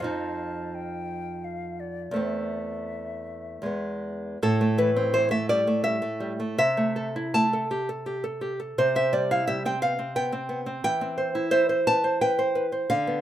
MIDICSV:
0, 0, Header, 1, 3, 480
1, 0, Start_track
1, 0, Key_signature, 0, "minor"
1, 0, Tempo, 693642
1, 41, Time_signature, 3, 2, 24, 8
1, 1002, Tempo, 742574
1, 2922, Tempo, 729040
1, 5322, Tempo, 691244
1, 8896, End_track
2, 0, Start_track
2, 0, Title_t, "Flute"
2, 0, Program_c, 0, 73
2, 34, Note_on_c, 0, 81, 85
2, 515, Note_on_c, 0, 79, 83
2, 526, Note_off_c, 0, 81, 0
2, 999, Note_on_c, 0, 77, 72
2, 1009, Note_off_c, 0, 79, 0
2, 1229, Note_on_c, 0, 74, 69
2, 1239, Note_off_c, 0, 77, 0
2, 1470, Note_on_c, 0, 76, 59
2, 1480, Note_off_c, 0, 74, 0
2, 2678, Note_off_c, 0, 76, 0
2, 8896, End_track
3, 0, Start_track
3, 0, Title_t, "Nylon-string guitar"
3, 0, Program_c, 1, 24
3, 0, Note_on_c, 1, 41, 60
3, 17, Note_on_c, 1, 53, 48
3, 28, Note_on_c, 1, 63, 54
3, 1429, Note_off_c, 1, 41, 0
3, 1432, Note_on_c, 1, 40, 52
3, 1438, Note_off_c, 1, 53, 0
3, 1444, Note_off_c, 1, 63, 0
3, 1447, Note_on_c, 1, 57, 42
3, 1462, Note_on_c, 1, 60, 41
3, 2394, Note_off_c, 1, 40, 0
3, 2402, Note_off_c, 1, 57, 0
3, 2404, Note_on_c, 1, 40, 45
3, 2409, Note_off_c, 1, 60, 0
3, 2413, Note_on_c, 1, 56, 37
3, 2431, Note_on_c, 1, 59, 36
3, 2887, Note_off_c, 1, 40, 0
3, 2891, Note_off_c, 1, 56, 0
3, 2901, Note_off_c, 1, 59, 0
3, 2927, Note_on_c, 1, 45, 73
3, 2930, Note_on_c, 1, 69, 96
3, 3047, Note_on_c, 1, 57, 55
3, 3155, Note_off_c, 1, 69, 0
3, 3159, Note_on_c, 1, 52, 51
3, 3163, Note_on_c, 1, 71, 88
3, 3235, Note_off_c, 1, 57, 0
3, 3282, Note_on_c, 1, 60, 58
3, 3349, Note_off_c, 1, 52, 0
3, 3387, Note_off_c, 1, 71, 0
3, 3394, Note_on_c, 1, 52, 54
3, 3395, Note_on_c, 1, 72, 92
3, 3467, Note_off_c, 1, 60, 0
3, 3506, Note_off_c, 1, 72, 0
3, 3508, Note_on_c, 1, 57, 53
3, 3509, Note_on_c, 1, 76, 87
3, 3582, Note_off_c, 1, 52, 0
3, 3627, Note_off_c, 1, 76, 0
3, 3628, Note_on_c, 1, 55, 48
3, 3630, Note_on_c, 1, 74, 94
3, 3698, Note_off_c, 1, 57, 0
3, 3747, Note_off_c, 1, 55, 0
3, 3748, Note_on_c, 1, 57, 52
3, 3853, Note_off_c, 1, 74, 0
3, 3856, Note_on_c, 1, 76, 92
3, 3861, Note_on_c, 1, 55, 50
3, 3938, Note_off_c, 1, 57, 0
3, 3975, Note_on_c, 1, 57, 56
3, 3983, Note_off_c, 1, 55, 0
3, 4097, Note_on_c, 1, 55, 48
3, 4171, Note_off_c, 1, 57, 0
3, 4221, Note_off_c, 1, 55, 0
3, 4224, Note_on_c, 1, 57, 49
3, 4320, Note_off_c, 1, 76, 0
3, 4322, Note_off_c, 1, 45, 0
3, 4345, Note_off_c, 1, 57, 0
3, 4347, Note_on_c, 1, 48, 70
3, 4349, Note_on_c, 1, 76, 106
3, 4472, Note_on_c, 1, 57, 52
3, 4595, Note_on_c, 1, 69, 54
3, 4674, Note_off_c, 1, 57, 0
3, 4726, Note_on_c, 1, 64, 55
3, 4798, Note_off_c, 1, 69, 0
3, 4829, Note_off_c, 1, 76, 0
3, 4847, Note_on_c, 1, 81, 93
3, 4849, Note_on_c, 1, 57, 55
3, 4922, Note_off_c, 1, 64, 0
3, 4972, Note_on_c, 1, 69, 52
3, 5041, Note_off_c, 1, 57, 0
3, 5088, Note_on_c, 1, 67, 47
3, 5159, Note_off_c, 1, 69, 0
3, 5204, Note_off_c, 1, 67, 0
3, 5207, Note_on_c, 1, 69, 56
3, 5320, Note_on_c, 1, 67, 44
3, 5395, Note_off_c, 1, 69, 0
3, 5442, Note_off_c, 1, 67, 0
3, 5442, Note_on_c, 1, 69, 55
3, 5536, Note_off_c, 1, 81, 0
3, 5564, Note_on_c, 1, 67, 49
3, 5639, Note_off_c, 1, 69, 0
3, 5688, Note_off_c, 1, 67, 0
3, 5692, Note_on_c, 1, 69, 53
3, 5785, Note_off_c, 1, 48, 0
3, 5813, Note_off_c, 1, 69, 0
3, 5821, Note_on_c, 1, 48, 69
3, 5823, Note_on_c, 1, 72, 97
3, 5938, Note_off_c, 1, 72, 0
3, 5940, Note_on_c, 1, 60, 51
3, 5945, Note_on_c, 1, 76, 87
3, 6059, Note_off_c, 1, 76, 0
3, 6060, Note_on_c, 1, 55, 54
3, 6062, Note_on_c, 1, 74, 86
3, 6130, Note_off_c, 1, 60, 0
3, 6177, Note_off_c, 1, 74, 0
3, 6187, Note_on_c, 1, 64, 57
3, 6188, Note_on_c, 1, 77, 90
3, 6249, Note_off_c, 1, 55, 0
3, 6299, Note_off_c, 1, 77, 0
3, 6302, Note_on_c, 1, 76, 97
3, 6307, Note_on_c, 1, 55, 53
3, 6372, Note_off_c, 1, 64, 0
3, 6417, Note_off_c, 1, 76, 0
3, 6427, Note_on_c, 1, 60, 51
3, 6430, Note_on_c, 1, 79, 87
3, 6490, Note_off_c, 1, 55, 0
3, 6539, Note_off_c, 1, 79, 0
3, 6540, Note_on_c, 1, 59, 48
3, 6542, Note_on_c, 1, 77, 96
3, 6610, Note_off_c, 1, 60, 0
3, 6655, Note_off_c, 1, 59, 0
3, 6658, Note_on_c, 1, 60, 53
3, 6765, Note_off_c, 1, 77, 0
3, 6776, Note_on_c, 1, 59, 48
3, 6777, Note_on_c, 1, 79, 99
3, 6845, Note_off_c, 1, 60, 0
3, 6892, Note_on_c, 1, 60, 53
3, 6893, Note_off_c, 1, 59, 0
3, 7007, Note_on_c, 1, 59, 51
3, 7080, Note_off_c, 1, 60, 0
3, 7125, Note_off_c, 1, 59, 0
3, 7127, Note_on_c, 1, 60, 51
3, 7221, Note_off_c, 1, 48, 0
3, 7228, Note_off_c, 1, 79, 0
3, 7245, Note_off_c, 1, 60, 0
3, 7250, Note_on_c, 1, 52, 73
3, 7252, Note_on_c, 1, 79, 110
3, 7369, Note_on_c, 1, 60, 52
3, 7483, Note_on_c, 1, 72, 55
3, 7558, Note_off_c, 1, 60, 0
3, 7604, Note_on_c, 1, 64, 57
3, 7675, Note_off_c, 1, 72, 0
3, 7706, Note_off_c, 1, 79, 0
3, 7716, Note_on_c, 1, 72, 106
3, 7720, Note_on_c, 1, 76, 58
3, 7795, Note_off_c, 1, 64, 0
3, 7834, Note_off_c, 1, 72, 0
3, 7842, Note_on_c, 1, 72, 59
3, 7912, Note_off_c, 1, 76, 0
3, 7966, Note_on_c, 1, 71, 51
3, 7966, Note_on_c, 1, 81, 104
3, 8031, Note_off_c, 1, 72, 0
3, 8082, Note_off_c, 1, 71, 0
3, 8083, Note_on_c, 1, 72, 59
3, 8189, Note_off_c, 1, 81, 0
3, 8204, Note_on_c, 1, 71, 50
3, 8204, Note_on_c, 1, 79, 86
3, 8270, Note_off_c, 1, 72, 0
3, 8319, Note_off_c, 1, 71, 0
3, 8324, Note_on_c, 1, 72, 61
3, 8439, Note_on_c, 1, 71, 50
3, 8511, Note_off_c, 1, 72, 0
3, 8557, Note_off_c, 1, 71, 0
3, 8557, Note_on_c, 1, 72, 55
3, 8651, Note_off_c, 1, 52, 0
3, 8659, Note_off_c, 1, 79, 0
3, 8677, Note_off_c, 1, 72, 0
3, 8678, Note_on_c, 1, 50, 75
3, 8678, Note_on_c, 1, 77, 105
3, 8801, Note_on_c, 1, 59, 59
3, 8896, Note_off_c, 1, 50, 0
3, 8896, Note_off_c, 1, 59, 0
3, 8896, Note_off_c, 1, 77, 0
3, 8896, End_track
0, 0, End_of_file